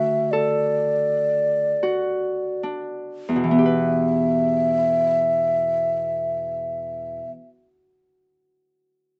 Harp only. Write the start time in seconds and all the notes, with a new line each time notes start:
Already playing: D3 A3 D4 F#4
0.33 A4
1.83 F#4
2.63 D4
3.29 E2
3.36 B2
3.44 E3
3.51 B3
3.59 G4
3.66 B4